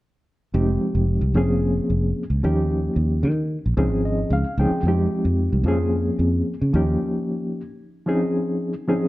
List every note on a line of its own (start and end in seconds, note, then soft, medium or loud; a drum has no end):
0.54 0.77 F1 medium
0.54 1.34 F3 medium
0.54 1.35 G#3 medium
0.54 1.34 C4 medium
0.54 1.35 D#4 medium
0.54 1.35 G4 medium
0.95 1.18 F1 medium
1.21 1.32 C2 medium
1.34 1.79 F1 medium
1.34 2.22 F3 medium
1.34 2.22 A#3 medium
1.34 2.22 C4 medium
1.34 2.23 C#4 medium
1.34 2.23 G#4 medium
1.90 2.12 F1 medium
2.30 2.41 C#2 medium
2.43 2.88 D#2 medium
2.43 3.30 F3 medium
2.43 3.30 A#3 medium
2.43 3.30 C#4 medium
2.43 3.31 D#4 medium
2.43 3.31 G4 medium
2.96 3.25 D#2 medium
3.23 3.58 D#3 medium
3.66 3.76 A#1 medium
3.77 3.90 C#2 medium
3.77 4.43 F3 medium
3.77 4.43 C4 medium
3.77 4.43 C#4 medium
3.77 4.44 D#4 medium
3.77 4.44 G#4 medium
3.90 4.24 G#1 medium
4.05 4.30 D#5 soft
4.30 4.43 C#2 medium
4.30 4.57 F5 medium
4.57 4.70 C#2 medium
4.57 4.80 F3 medium
4.57 4.80 C4 medium
4.57 4.80 C#4 medium
4.57 4.80 D#4 medium
4.57 4.80 G#4 medium
4.57 4.84 G5 medium
4.71 muted fingered electric bass stroke soft
4.83 5.06 F2 medium
4.83 5.65 F3 medium
4.83 5.66 G#3 medium
4.83 5.65 C4 medium
4.88 5.67 D#4 medium
4.88 5.67 G4 medium
5.25 5.48 F2 medium
5.53 5.63 C2 medium
5.64 6.09 F2 medium
5.64 6.53 F3 medium
5.64 6.53 A#3 medium
5.64 6.53 C4 medium
5.64 6.53 C#4 medium
5.68 6.54 G#4 medium
6.19 6.41 F2 medium
6.61 6.71 C#3 medium
6.73 6.96 D#2 medium
6.73 7.60 F3 medium
6.73 7.60 A#3 medium
6.73 7.61 C#4 medium
6.73 7.61 D#4 medium
6.73 7.61 G4 medium
8.06 8.72 F3 medium
8.06 8.73 C4 medium
8.06 8.73 C#4 medium
8.06 8.73 D#4 medium
8.06 8.73 G#4 medium
8.88 9.08 F3 medium
8.88 9.08 C4 medium
8.88 9.08 C#4 medium
8.88 9.08 D#4 medium
8.88 9.08 G#4 medium